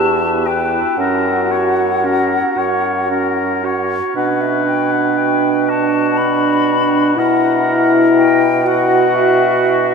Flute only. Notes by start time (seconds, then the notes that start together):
Already playing: A5
0.46 G5
0.97 F#5
4.15 F#5
4.41 E5
4.67 G5
4.92 F#5
5.18 G5
5.69 A5
6.17 B5
7.17 F#5
8.17 G5
8.66 F#5
9.15 E5